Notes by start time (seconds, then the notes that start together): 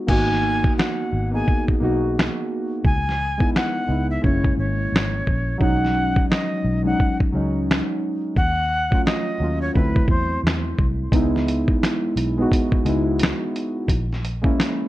Already playing: G#3 B3 D#4 F#4
0.07 G#1 A#3 B3 D#4 F#4 G#5, kick, crash
0.33 snare
0.64 kick
0.78 F#5, finger snap, snare
1.13 G#1
1.31 A#3 B3 D#4 G#4 G#5
1.48 kick
1.68 kick
1.80 B1 A#3 B3 D#4 F#4
2.19 finger snap, snare
2.85 C#2 G#5, kick
3.09 snare
3.38 G#3 B3 D#4, kick
3.42 E4
3.56 F#5, finger snap, snare
3.88 C#2 G#3 B3 D#4 E4
4.11 E5
4.22 F#1 G#3 A#3 C#4 E4 C#5, kick
4.44 kick
4.58 G#1 C#5
4.92 G#1, snare
4.97 finger snap
5.27 A#1, kick
5.58 B1 F#3 G#3 C#4 D#4 F#5, kick
5.85 snare
6.16 kick
6.30 D#5, finger snap, snare
6.64 B1
6.83 F#3 G#3 C#4 D#4 F#5
7.00 kick
7.20 kick
7.32 C#2 F#3 G#3 C#4 D#4
7.71 finger snap, snare
8.36 D#2 F#5, kick
8.90 F#3 A3 C#4 F4, kick
9.06 D#5, finger snap, snare
9.39 D#2 F#3 A3 C#4
9.44 F4
9.62 C#5
9.74 D2 F#3 A3 C4 B4, kick
9.78 E4
9.96 kick
10.08 E2 C5, kick
10.43 E2, snare
10.48 finger snap
10.79 C2, kick
11.12 C#2 G#3 B3 D#4 E4, kick, closed hi-hat
11.36 snare
11.48 closed hi-hat
11.68 kick
11.83 finger snap, snare, closed hi-hat
12.16 B1, closed hi-hat
12.38 G#3 B3 D#4
12.42 F#4
12.52 kick, closed hi-hat
12.72 kick
12.85 C#2 G#3 B3 D#4, closed hi-hat
12.89 E4
13.19 snare, closed hi-hat
13.24 finger snap
13.56 closed hi-hat
13.88 A#1, kick, closed hi-hat
14.13 snare
14.25 closed hi-hat
14.42 G#3 A#3 C#4 E4, kick
14.60 finger snap, snare, closed hi-hat